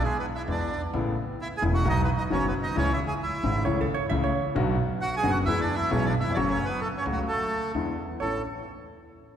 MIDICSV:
0, 0, Header, 1, 5, 480
1, 0, Start_track
1, 0, Key_signature, 3, "major"
1, 0, Tempo, 454201
1, 998, Time_signature, 4, 2, 24, 8
1, 9898, End_track
2, 0, Start_track
2, 0, Title_t, "Hollow-body jazz guitar"
2, 0, Program_c, 0, 26
2, 3856, Note_on_c, 0, 73, 96
2, 4007, Note_off_c, 0, 73, 0
2, 4025, Note_on_c, 0, 69, 85
2, 4168, Note_on_c, 0, 73, 102
2, 4186, Note_off_c, 0, 69, 0
2, 4324, Note_off_c, 0, 73, 0
2, 4328, Note_on_c, 0, 76, 102
2, 4474, Note_off_c, 0, 76, 0
2, 4479, Note_on_c, 0, 73, 90
2, 5121, Note_off_c, 0, 73, 0
2, 8666, Note_on_c, 0, 73, 69
2, 8893, Note_off_c, 0, 73, 0
2, 9898, End_track
3, 0, Start_track
3, 0, Title_t, "Bandoneon"
3, 0, Program_c, 1, 23
3, 35, Note_on_c, 1, 68, 84
3, 47, Note_on_c, 1, 56, 67
3, 182, Note_off_c, 1, 68, 0
3, 188, Note_off_c, 1, 56, 0
3, 206, Note_on_c, 1, 71, 75
3, 210, Note_on_c, 1, 59, 63
3, 275, Note_off_c, 1, 71, 0
3, 278, Note_off_c, 1, 59, 0
3, 374, Note_on_c, 1, 76, 78
3, 384, Note_on_c, 1, 64, 61
3, 442, Note_off_c, 1, 76, 0
3, 450, Note_off_c, 1, 64, 0
3, 535, Note_on_c, 1, 74, 76
3, 546, Note_on_c, 1, 62, 59
3, 864, Note_off_c, 1, 74, 0
3, 870, Note_off_c, 1, 62, 0
3, 1492, Note_on_c, 1, 64, 74
3, 1496, Note_on_c, 1, 76, 93
3, 1562, Note_off_c, 1, 64, 0
3, 1565, Note_off_c, 1, 76, 0
3, 1659, Note_on_c, 1, 80, 99
3, 1662, Note_on_c, 1, 68, 80
3, 1728, Note_off_c, 1, 80, 0
3, 1729, Note_off_c, 1, 68, 0
3, 1837, Note_on_c, 1, 66, 85
3, 1848, Note_on_c, 1, 78, 95
3, 1970, Note_off_c, 1, 66, 0
3, 1989, Note_off_c, 1, 78, 0
3, 1997, Note_on_c, 1, 63, 77
3, 1999, Note_on_c, 1, 75, 103
3, 2129, Note_off_c, 1, 63, 0
3, 2130, Note_off_c, 1, 75, 0
3, 2147, Note_on_c, 1, 59, 68
3, 2158, Note_on_c, 1, 71, 80
3, 2213, Note_off_c, 1, 59, 0
3, 2222, Note_off_c, 1, 71, 0
3, 2290, Note_on_c, 1, 63, 71
3, 2303, Note_on_c, 1, 75, 81
3, 2359, Note_off_c, 1, 63, 0
3, 2369, Note_off_c, 1, 75, 0
3, 2448, Note_on_c, 1, 61, 75
3, 2469, Note_on_c, 1, 73, 91
3, 2591, Note_off_c, 1, 61, 0
3, 2599, Note_on_c, 1, 59, 63
3, 2602, Note_off_c, 1, 73, 0
3, 2625, Note_on_c, 1, 71, 76
3, 2670, Note_off_c, 1, 59, 0
3, 2690, Note_off_c, 1, 71, 0
3, 2770, Note_on_c, 1, 63, 70
3, 2786, Note_on_c, 1, 75, 90
3, 2911, Note_off_c, 1, 63, 0
3, 2919, Note_off_c, 1, 75, 0
3, 2929, Note_on_c, 1, 61, 78
3, 2944, Note_on_c, 1, 73, 96
3, 3069, Note_off_c, 1, 61, 0
3, 3091, Note_on_c, 1, 64, 71
3, 3092, Note_off_c, 1, 73, 0
3, 3104, Note_on_c, 1, 76, 91
3, 3158, Note_off_c, 1, 64, 0
3, 3168, Note_off_c, 1, 76, 0
3, 3242, Note_on_c, 1, 68, 73
3, 3257, Note_on_c, 1, 80, 88
3, 3310, Note_off_c, 1, 68, 0
3, 3322, Note_off_c, 1, 80, 0
3, 3411, Note_on_c, 1, 64, 66
3, 3412, Note_on_c, 1, 76, 83
3, 3842, Note_off_c, 1, 64, 0
3, 3843, Note_off_c, 1, 76, 0
3, 5298, Note_on_c, 1, 78, 108
3, 5306, Note_on_c, 1, 66, 85
3, 5443, Note_off_c, 1, 78, 0
3, 5447, Note_off_c, 1, 66, 0
3, 5458, Note_on_c, 1, 80, 108
3, 5471, Note_on_c, 1, 68, 84
3, 5606, Note_on_c, 1, 78, 103
3, 5609, Note_off_c, 1, 68, 0
3, 5618, Note_off_c, 1, 80, 0
3, 5625, Note_on_c, 1, 66, 81
3, 5679, Note_off_c, 1, 78, 0
3, 5693, Note_off_c, 1, 66, 0
3, 5766, Note_on_c, 1, 76, 109
3, 5789, Note_on_c, 1, 64, 85
3, 5916, Note_off_c, 1, 76, 0
3, 5923, Note_on_c, 1, 74, 89
3, 5928, Note_off_c, 1, 64, 0
3, 5941, Note_on_c, 1, 62, 74
3, 6075, Note_off_c, 1, 74, 0
3, 6075, Note_on_c, 1, 76, 93
3, 6084, Note_off_c, 1, 62, 0
3, 6089, Note_on_c, 1, 64, 73
3, 6238, Note_off_c, 1, 64, 0
3, 6246, Note_on_c, 1, 73, 94
3, 6247, Note_off_c, 1, 76, 0
3, 6269, Note_on_c, 1, 61, 77
3, 6397, Note_off_c, 1, 73, 0
3, 6404, Note_on_c, 1, 74, 86
3, 6409, Note_off_c, 1, 61, 0
3, 6431, Note_on_c, 1, 62, 73
3, 6477, Note_off_c, 1, 74, 0
3, 6498, Note_off_c, 1, 62, 0
3, 6554, Note_on_c, 1, 76, 92
3, 6592, Note_on_c, 1, 64, 69
3, 6673, Note_off_c, 1, 76, 0
3, 6693, Note_off_c, 1, 64, 0
3, 6697, Note_on_c, 1, 74, 73
3, 6715, Note_on_c, 1, 73, 105
3, 6733, Note_off_c, 1, 74, 0
3, 6747, Note_on_c, 1, 61, 73
3, 6858, Note_off_c, 1, 73, 0
3, 6874, Note_on_c, 1, 73, 92
3, 6887, Note_off_c, 1, 61, 0
3, 6904, Note_on_c, 1, 61, 71
3, 7027, Note_on_c, 1, 71, 90
3, 7030, Note_off_c, 1, 73, 0
3, 7046, Note_off_c, 1, 61, 0
3, 7061, Note_on_c, 1, 59, 65
3, 7187, Note_off_c, 1, 71, 0
3, 7197, Note_on_c, 1, 69, 78
3, 7205, Note_off_c, 1, 59, 0
3, 7224, Note_on_c, 1, 57, 61
3, 7273, Note_off_c, 1, 69, 0
3, 7293, Note_off_c, 1, 57, 0
3, 7371, Note_on_c, 1, 73, 88
3, 7395, Note_on_c, 1, 61, 64
3, 7444, Note_off_c, 1, 73, 0
3, 7462, Note_off_c, 1, 61, 0
3, 7525, Note_on_c, 1, 66, 80
3, 7554, Note_on_c, 1, 54, 62
3, 7599, Note_off_c, 1, 66, 0
3, 7622, Note_off_c, 1, 54, 0
3, 7696, Note_on_c, 1, 69, 88
3, 7716, Note_on_c, 1, 57, 66
3, 8148, Note_off_c, 1, 69, 0
3, 8159, Note_off_c, 1, 57, 0
3, 8678, Note_on_c, 1, 69, 81
3, 8899, Note_off_c, 1, 69, 0
3, 9898, End_track
4, 0, Start_track
4, 0, Title_t, "Grand piano"
4, 0, Program_c, 2, 0
4, 509, Note_on_c, 2, 50, 69
4, 509, Note_on_c, 2, 56, 67
4, 512, Note_on_c, 2, 59, 65
4, 513, Note_on_c, 2, 40, 83
4, 516, Note_on_c, 2, 52, 77
4, 516, Note_on_c, 2, 64, 76
4, 716, Note_off_c, 2, 50, 0
4, 716, Note_off_c, 2, 56, 0
4, 717, Note_off_c, 2, 59, 0
4, 718, Note_off_c, 2, 40, 0
4, 719, Note_off_c, 2, 52, 0
4, 719, Note_off_c, 2, 64, 0
4, 989, Note_on_c, 2, 49, 80
4, 995, Note_on_c, 2, 57, 71
4, 996, Note_on_c, 2, 33, 92
4, 996, Note_on_c, 2, 59, 72
4, 997, Note_on_c, 2, 64, 87
4, 999, Note_on_c, 2, 45, 87
4, 1195, Note_off_c, 2, 49, 0
4, 1198, Note_off_c, 2, 33, 0
4, 1198, Note_off_c, 2, 57, 0
4, 1199, Note_off_c, 2, 59, 0
4, 1199, Note_off_c, 2, 64, 0
4, 1200, Note_off_c, 2, 45, 0
4, 1713, Note_on_c, 2, 28, 91
4, 1715, Note_on_c, 2, 57, 67
4, 1715, Note_on_c, 2, 64, 84
4, 1716, Note_on_c, 2, 49, 71
4, 1717, Note_on_c, 2, 59, 68
4, 1722, Note_on_c, 2, 40, 89
4, 1919, Note_off_c, 2, 28, 0
4, 1920, Note_off_c, 2, 57, 0
4, 1920, Note_off_c, 2, 64, 0
4, 1921, Note_off_c, 2, 49, 0
4, 1921, Note_off_c, 2, 59, 0
4, 1923, Note_off_c, 2, 40, 0
4, 1948, Note_on_c, 2, 59, 71
4, 1949, Note_on_c, 2, 51, 76
4, 1951, Note_on_c, 2, 66, 87
4, 1952, Note_on_c, 2, 47, 90
4, 1953, Note_on_c, 2, 35, 95
4, 1953, Note_on_c, 2, 54, 72
4, 2156, Note_off_c, 2, 51, 0
4, 2156, Note_off_c, 2, 59, 0
4, 2157, Note_off_c, 2, 66, 0
4, 2158, Note_off_c, 2, 35, 0
4, 2158, Note_off_c, 2, 47, 0
4, 2158, Note_off_c, 2, 54, 0
4, 2434, Note_on_c, 2, 51, 79
4, 2438, Note_on_c, 2, 54, 73
4, 2440, Note_on_c, 2, 66, 85
4, 2441, Note_on_c, 2, 59, 73
4, 2442, Note_on_c, 2, 42, 89
4, 2443, Note_on_c, 2, 30, 93
4, 2636, Note_off_c, 2, 51, 0
4, 2638, Note_off_c, 2, 54, 0
4, 2639, Note_off_c, 2, 59, 0
4, 2639, Note_off_c, 2, 66, 0
4, 2640, Note_off_c, 2, 30, 0
4, 2640, Note_off_c, 2, 42, 0
4, 2913, Note_on_c, 2, 49, 96
4, 2913, Note_on_c, 2, 52, 73
4, 2916, Note_on_c, 2, 37, 93
4, 2918, Note_on_c, 2, 56, 75
4, 2924, Note_on_c, 2, 64, 94
4, 3114, Note_off_c, 2, 52, 0
4, 3115, Note_off_c, 2, 37, 0
4, 3115, Note_off_c, 2, 49, 0
4, 3116, Note_off_c, 2, 56, 0
4, 3119, Note_off_c, 2, 64, 0
4, 3629, Note_on_c, 2, 49, 75
4, 3632, Note_on_c, 2, 44, 97
4, 3632, Note_on_c, 2, 56, 68
4, 3637, Note_on_c, 2, 52, 75
4, 3637, Note_on_c, 2, 64, 86
4, 3639, Note_on_c, 2, 32, 91
4, 3827, Note_off_c, 2, 49, 0
4, 3828, Note_off_c, 2, 44, 0
4, 3829, Note_off_c, 2, 56, 0
4, 3831, Note_off_c, 2, 52, 0
4, 3831, Note_off_c, 2, 64, 0
4, 3832, Note_off_c, 2, 32, 0
4, 3862, Note_on_c, 2, 52, 68
4, 3863, Note_on_c, 2, 49, 90
4, 3865, Note_on_c, 2, 37, 94
4, 3866, Note_on_c, 2, 57, 72
4, 3868, Note_on_c, 2, 64, 83
4, 4062, Note_off_c, 2, 52, 0
4, 4064, Note_off_c, 2, 37, 0
4, 4065, Note_off_c, 2, 57, 0
4, 4065, Note_off_c, 2, 64, 0
4, 4067, Note_off_c, 2, 49, 0
4, 4341, Note_on_c, 2, 49, 99
4, 4341, Note_on_c, 2, 52, 70
4, 4344, Note_on_c, 2, 37, 89
4, 4345, Note_on_c, 2, 57, 77
4, 4345, Note_on_c, 2, 64, 89
4, 4538, Note_off_c, 2, 52, 0
4, 4540, Note_off_c, 2, 37, 0
4, 4540, Note_off_c, 2, 57, 0
4, 4540, Note_off_c, 2, 64, 0
4, 4541, Note_off_c, 2, 49, 0
4, 4805, Note_on_c, 2, 50, 84
4, 4809, Note_on_c, 2, 54, 73
4, 4812, Note_on_c, 2, 47, 102
4, 4812, Note_on_c, 2, 59, 80
4, 4816, Note_on_c, 2, 35, 102
4, 4816, Note_on_c, 2, 66, 96
4, 5010, Note_off_c, 2, 50, 0
4, 5012, Note_off_c, 2, 54, 0
4, 5013, Note_off_c, 2, 47, 0
4, 5013, Note_off_c, 2, 59, 0
4, 5015, Note_off_c, 2, 35, 0
4, 5015, Note_off_c, 2, 66, 0
4, 5526, Note_on_c, 2, 59, 75
4, 5527, Note_on_c, 2, 30, 94
4, 5527, Note_on_c, 2, 50, 79
4, 5527, Note_on_c, 2, 54, 69
4, 5532, Note_on_c, 2, 42, 98
4, 5538, Note_on_c, 2, 66, 92
4, 5729, Note_off_c, 2, 50, 0
4, 5729, Note_off_c, 2, 54, 0
4, 5729, Note_off_c, 2, 59, 0
4, 5730, Note_off_c, 2, 30, 0
4, 5732, Note_off_c, 2, 42, 0
4, 5735, Note_off_c, 2, 66, 0
4, 5775, Note_on_c, 2, 52, 95
4, 5777, Note_on_c, 2, 56, 67
4, 5781, Note_on_c, 2, 59, 79
4, 5784, Note_on_c, 2, 40, 92
4, 5785, Note_on_c, 2, 68, 90
4, 5975, Note_off_c, 2, 56, 0
4, 5976, Note_off_c, 2, 59, 0
4, 5977, Note_off_c, 2, 52, 0
4, 5978, Note_off_c, 2, 40, 0
4, 5979, Note_off_c, 2, 68, 0
4, 6238, Note_on_c, 2, 52, 75
4, 6242, Note_on_c, 2, 56, 71
4, 6243, Note_on_c, 2, 35, 95
4, 6243, Note_on_c, 2, 47, 89
4, 6243, Note_on_c, 2, 68, 84
4, 6245, Note_on_c, 2, 59, 72
4, 6445, Note_off_c, 2, 52, 0
4, 6447, Note_off_c, 2, 56, 0
4, 6448, Note_off_c, 2, 35, 0
4, 6448, Note_off_c, 2, 47, 0
4, 6448, Note_off_c, 2, 68, 0
4, 6449, Note_off_c, 2, 59, 0
4, 6557, Note_on_c, 2, 39, 61
4, 6611, Note_on_c, 2, 40, 65
4, 6613, Note_off_c, 2, 39, 0
4, 6660, Note_on_c, 2, 41, 80
4, 6670, Note_off_c, 2, 40, 0
4, 6724, Note_off_c, 2, 41, 0
4, 6724, Note_on_c, 2, 49, 81
4, 6726, Note_on_c, 2, 54, 98
4, 6726, Note_on_c, 2, 57, 78
4, 6729, Note_on_c, 2, 42, 95
4, 6732, Note_on_c, 2, 66, 88
4, 6928, Note_off_c, 2, 49, 0
4, 6929, Note_off_c, 2, 54, 0
4, 6929, Note_off_c, 2, 57, 0
4, 6930, Note_off_c, 2, 42, 0
4, 6932, Note_off_c, 2, 66, 0
4, 7459, Note_on_c, 2, 49, 86
4, 7463, Note_on_c, 2, 54, 66
4, 7465, Note_on_c, 2, 37, 80
4, 7469, Note_on_c, 2, 66, 82
4, 7470, Note_on_c, 2, 57, 64
4, 7660, Note_off_c, 2, 49, 0
4, 7661, Note_off_c, 2, 54, 0
4, 7662, Note_off_c, 2, 37, 0
4, 7664, Note_off_c, 2, 57, 0
4, 7664, Note_off_c, 2, 66, 0
4, 8188, Note_on_c, 2, 50, 71
4, 8191, Note_on_c, 2, 52, 85
4, 8193, Note_on_c, 2, 56, 67
4, 8194, Note_on_c, 2, 64, 82
4, 8196, Note_on_c, 2, 40, 85
4, 8199, Note_on_c, 2, 59, 68
4, 8390, Note_off_c, 2, 50, 0
4, 8392, Note_off_c, 2, 52, 0
4, 8393, Note_off_c, 2, 56, 0
4, 8394, Note_off_c, 2, 40, 0
4, 8394, Note_off_c, 2, 64, 0
4, 8396, Note_off_c, 2, 59, 0
4, 8681, Note_on_c, 2, 57, 52
4, 8682, Note_on_c, 2, 33, 61
4, 8683, Note_on_c, 2, 61, 55
4, 8687, Note_on_c, 2, 64, 63
4, 8879, Note_off_c, 2, 33, 0
4, 8879, Note_off_c, 2, 57, 0
4, 8880, Note_off_c, 2, 61, 0
4, 8882, Note_off_c, 2, 64, 0
4, 9898, End_track
5, 0, Start_track
5, 0, Title_t, "Upright bass"
5, 0, Program_c, 3, 32
5, 503, Note_on_c, 3, 40, 94
5, 713, Note_off_c, 3, 40, 0
5, 987, Note_on_c, 3, 33, 102
5, 1194, Note_off_c, 3, 33, 0
5, 1715, Note_on_c, 3, 28, 102
5, 1920, Note_off_c, 3, 28, 0
5, 1960, Note_on_c, 3, 35, 104
5, 2162, Note_off_c, 3, 35, 0
5, 2442, Note_on_c, 3, 30, 96
5, 2640, Note_off_c, 3, 30, 0
5, 2919, Note_on_c, 3, 37, 102
5, 3116, Note_off_c, 3, 37, 0
5, 3627, Note_on_c, 3, 32, 100
5, 3826, Note_off_c, 3, 32, 0
5, 3866, Note_on_c, 3, 37, 100
5, 4064, Note_off_c, 3, 37, 0
5, 4343, Note_on_c, 3, 37, 89
5, 4539, Note_off_c, 3, 37, 0
5, 4817, Note_on_c, 3, 35, 111
5, 5015, Note_off_c, 3, 35, 0
5, 5530, Note_on_c, 3, 30, 103
5, 5731, Note_off_c, 3, 30, 0
5, 5769, Note_on_c, 3, 40, 103
5, 5970, Note_off_c, 3, 40, 0
5, 6248, Note_on_c, 3, 35, 98
5, 6451, Note_off_c, 3, 35, 0
5, 6731, Note_on_c, 3, 30, 97
5, 6931, Note_off_c, 3, 30, 0
5, 7458, Note_on_c, 3, 37, 98
5, 7658, Note_off_c, 3, 37, 0
5, 8183, Note_on_c, 3, 40, 86
5, 8388, Note_off_c, 3, 40, 0
5, 8671, Note_on_c, 3, 33, 59
5, 8874, Note_off_c, 3, 33, 0
5, 9898, End_track
0, 0, End_of_file